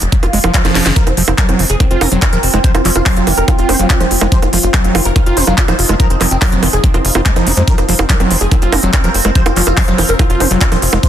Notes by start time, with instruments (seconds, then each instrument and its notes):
0.02 analog synth bass F1, closed hi-hat
0.12 acid bass F#3, kick, closed hi-hat, swell
0.23 analog synth bass F1, acid bass F4, closed hi-hat, high bongo
0.33 analog synth bass F1, acid bass G#3, open hi-hat
0.44 analog synth bass F1, acid bass F3, closed hi-hat, high bongo
0.54 acid bass F3, kick, clap, closed hi-hat
0.65 analog synth bass F1, acid bass F3, snare, closed hi-hat, high bongo
0.75 analog synth bass F1, snare, open hi-hat
0.86 analog synth bass F#1, acid bass D#3, snare, closed hi-hat
0.96 synth drone F3 C4, acid bass F3, supersaw synth A#4, kick, closed hi-hat
1.07 analog synth bass F1, supersaw synth C4, closed hi-hat, high bongo
1.17 analog synth bass F1, acid bass F3, supersaw synth C4, open hi-hat
1.28 analog synth bass F1, supersaw synth C4, closed hi-hat, high bongo
1.38 acid bass F#3, supersaw synth A#4, kick, clap, closed hi-hat
1.49 analog synth bass F1, supersaw synth C4, closed hi-hat, high bongo
1.59 analog synth bass F1, acid bass D#3, supersaw synth C4, open hi-hat
1.70 analog synth bass F1, supersaw synth G#4, closed hi-hat
1.80 acid bass F#3, supersaw synth C4, kick, closed hi-hat, high bongo
1.91 analog synth bass F1, supersaw synth C4, acid bass F4, closed hi-hat
2.01 analog synth bass F1, acid bass C4, supersaw synth A#4, open hi-hat, high bongo
2.12 analog synth bass F1, acid bass F#3, supersaw synth C4, closed hi-hat
2.22 supersaw synth C4, kick, clap, closed hi-hat, high bongo
2.33 analog synth bass D#1, acid bass F3, supersaw synth A#4, closed hi-hat
2.43 analog synth bass F1, supersaw synth C4, open hi-hat
2.54 analog synth bass F1, acid bass G#3, supersaw synth C4, closed hi-hat, high bongo
2.64 acid bass F3, supersaw synth C5, kick, closed hi-hat
2.75 analog synth bass F1, supersaw synth F4, closed hi-hat, high bongo
2.85 analog synth bass F1, acid bass F3, supersaw synth F4, clap, open hi-hat
2.96 analog synth bass F1, supersaw synth F4, closed hi-hat, high bongo
3.06 acid bass F#3, supersaw synth C5, kick, clap, open hi-hat
3.17 analog synth bass F1, supersaw synth F4, closed hi-hat
3.27 analog synth bass F1, acid bass D#3, supersaw synth F4, open hi-hat, high bongo
3.38 analog synth bass F1, supersaw synth A#4, closed hi-hat
3.48 acid bass F#3, supersaw synth F4, kick, closed hi-hat, high bongo
3.58 analog synth bass F1, acid bass F4, supersaw synth F4, closed hi-hat
3.69 analog synth bass F1, acid bass C4, supersaw synth C5, open hi-hat, high bongo
3.79 analog synth bass F1, acid bass F#3, supersaw synth F4, closed hi-hat
3.90 supersaw synth F4, kick, clap, closed hi-hat
4.00 analog synth bass D#1, acid bass F3, supersaw synth C5, closed hi-hat, high bongo
4.11 analog synth bass F1, supersaw synth F4, open hi-hat
4.21 analog synth bass F1, acid bass G#3, supersaw synth F4, closed hi-hat, high bongo
4.32 acid bass F3, synth drone D#4, supersaw synth C5, kick, closed hi-hat
4.42 analog synth bass F1, supersaw synth F4, closed hi-hat, high bongo
4.53 analog synth bass F1, acid bass F3, supersaw synth F4, open hi-hat
4.63 analog synth bass F1, supersaw synth F4, closed hi-hat
4.74 acid bass F#3, supersaw synth C5, kick, clap, closed hi-hat, high bongo
4.84 analog synth bass F1, supersaw synth F4, closed hi-hat
4.95 analog synth bass F1, acid bass D#3, supersaw synth F4, open hi-hat, high bongo
5.05 analog synth bass F1, supersaw synth A#4, closed hi-hat
5.16 acid bass F#3, supersaw synth F4, kick, closed hi-hat, high bongo
5.26 analog synth bass F1, acid bass F4, supersaw synth F4, closed hi-hat
5.37 analog synth bass F1, acid bass C4, supersaw synth C5, open hi-hat
5.47 analog synth bass F1, acid bass F#3, supersaw synth F4, closed hi-hat, high bongo
5.58 supersaw synth F4, kick, clap, closed hi-hat
5.68 analog synth bass D#1, acid bass F3, supersaw synth C5, closed hi-hat, high bongo
5.79 analog synth bass F1, supersaw synth F4, open hi-hat
5.89 analog synth bass F1, acid bass G#3, supersaw synth F4, closed hi-hat, high bongo
6.00 acid bass F3, supersaw synth A#4, kick, closed hi-hat
6.10 analog synth bass F1, supersaw synth C4, closed hi-hat
6.21 analog synth bass F1, acid bass F3, supersaw synth C4, clap, open hi-hat, high bongo
6.31 analog synth bass F1, supersaw synth C4, closed hi-hat
6.42 acid bass F#3, supersaw synth A#4, kick, clap, open hi-hat, high bongo
6.52 analog synth bass F1, supersaw synth C4, closed hi-hat
6.63 analog synth bass F1, acid bass D#3, supersaw synth C4, open hi-hat, high bongo
6.73 analog synth bass F1, supersaw synth G#4, closed hi-hat
6.84 acid bass F#3, supersaw synth C4, kick, closed hi-hat
6.94 analog synth bass F1, supersaw synth C4, acid bass F4, closed hi-hat, high bongo
7.05 analog synth bass F1, supersaw synth F4, open hi-hat
7.15 analog synth bass F1, supersaw synth C4, acid bass F4, closed hi-hat, high bongo
7.26 acid bass G#3, supersaw synth C4, kick, clap, closed hi-hat
7.36 analog synth bass F1, acid bass F3, supersaw synth D#4, closed hi-hat, high bongo
7.47 analog synth bass F1, supersaw synth C4, acid bass F#4, open hi-hat
7.57 analog synth bass F2, acid bass G#3, supersaw synth C4, closed hi-hat
7.68 acid bass F3, synth drone C4, supersaw synth A#4, kick, closed hi-hat
7.78 analog synth bass F1, supersaw synth C4, closed hi-hat, high bongo
7.88 analog synth bass F1, acid bass F3, supersaw synth C4, open hi-hat
7.99 analog synth bass F1, supersaw synth C4, closed hi-hat, high bongo
8.09 acid bass F#3, supersaw synth A#4, kick, clap, closed hi-hat
8.20 analog synth bass F1, acid bass F#3, supersaw synth C4, closed hi-hat, high bongo
8.31 analog synth bass F1, acid bass D#3, supersaw synth C4, open hi-hat
8.41 analog synth bass F1, supersaw synth G#4, closed hi-hat
8.51 acid bass F#3, supersaw synth C4, kick, closed hi-hat, high bongo
8.62 analog synth bass F1, supersaw synth C4, acid bass F4, closed hi-hat
8.72 analog synth bass F1, acid bass C4, supersaw synth A#4, open hi-hat, high bongo
8.83 analog synth bass F1, acid bass F#3, supersaw synth C4, closed hi-hat
8.93 supersaw synth C4, kick, clap, closed hi-hat, high bongo
9.04 analog synth bass D#1, acid bass F3, supersaw synth A#4, closed hi-hat
9.14 analog synth bass F1, supersaw synth C4, open hi-hat
9.25 analog synth bass F1, acid bass G#3, supersaw synth C4, closed hi-hat, high bongo
9.35 acid bass F3, supersaw synth C5, kick, closed hi-hat
9.46 analog synth bass F1, supersaw synth F4, closed hi-hat, high bongo
9.56 analog synth bass F1, acid bass F3, supersaw synth F4, clap, open hi-hat
9.67 analog synth bass F1, supersaw synth F4, closed hi-hat, high bongo
9.77 acid bass F#3, supersaw synth C5, kick, clap, open hi-hat
9.88 analog synth bass F1, acid bass F#3, supersaw synth F4, closed hi-hat
9.98 analog synth bass F1, acid bass D#3, supersaw synth F4, open hi-hat, high bongo
10.09 analog synth bass F1, supersaw synth A#4, closed hi-hat
10.19 acid bass F#3, supersaw synth F4, kick, closed hi-hat, high bongo
10.30 analog synth bass F1, acid bass F4, supersaw synth F4, closed hi-hat
10.40 analog synth bass F1, acid bass C4, supersaw synth C5, open hi-hat, high bongo
10.51 analog synth bass F1, acid bass F#3, supersaw synth F4, closed hi-hat
10.61 supersaw synth F4, kick, clap, closed hi-hat
10.72 analog synth bass D#1, acid bass F3, supersaw synth C5, closed hi-hat, high bongo
10.82 analog synth bass F1, supersaw synth F4, open hi-hat
10.93 analog synth bass F1, acid bass G#3, supersaw synth F4, closed hi-hat, high bongo
11.03 acid bass F3, synth drone D#4, supersaw synth C5, kick, closed hi-hat